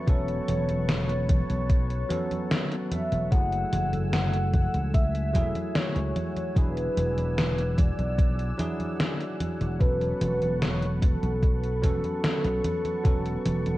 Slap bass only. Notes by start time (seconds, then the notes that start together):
0.07 E1
0.48 E1
1.50 B1
3.12 E1
3.32 F#1
3.73 F#1
4.74 C#2
5.35 E1
5.96 C#2
6.56 E1
6.97 E1
7.98 B1
9.61 E1
9.80 E1
10.21 E1
11.23 B1
11.83 E1
12.44 B1
13.05 E1
13.46 E1